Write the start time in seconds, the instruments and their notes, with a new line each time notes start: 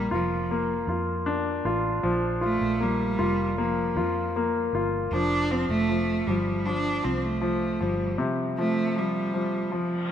Already playing: cello G3, grand piano A#3 F4
0.11 fingered electric bass F1, cello F3, grand piano F4
0.51 grand piano A#3
0.87 fingered electric bass F2, grand piano F4
1.26 grand piano D4
1.65 fingered electric bass A1, grand piano F4
2.03 fingered electric bass A#1, grand piano F3
2.41 cello A3, grand piano F4
2.61 fingered electric bass A#1
2.80 cello G3, grand piano A#3
3.19 fingered electric bass F1, grand piano F4
3.58 cello F3, grand piano A#3
3.96 fingered electric bass F2, grand piano F4
4.36 grand piano A#3
4.73 fingered electric bass G1, grand piano F4
5.12 fingered electric bass F1, grand piano F3, cello D4
5.51 grand piano F3, cello C4
5.69 fingered electric bass F1, cello A3
5.89 grand piano F3
6.27 fingered electric bass G1, grand piano F3, cello G3
6.66 grand piano F3, cello D4
7.03 fingered electric bass C2, grand piano F3, cello C4
7.24 cello A3
7.41 grand piano F3
7.80 fingered electric bass G1, grand piano F3, cello G3
8.18 grand piano C3
8.58 grand piano F3, cello A3
8.96 grand piano F3, cello G3
9.34 grand piano F3
9.72 grand piano F3, cello F3, reverse cymbal